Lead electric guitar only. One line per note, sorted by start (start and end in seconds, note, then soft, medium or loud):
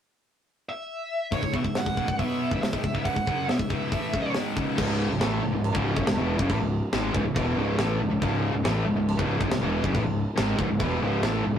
0.69 1.35 E5 medium
1.33 1.55 C#5 medium
1.55 1.77 E5 medium
1.78 2.20 F#5 medium
2.20 2.61 E5 medium
2.63 3.05 E5 medium
3.05 3.49 F#5 loud
3.50 4.31 E5 medium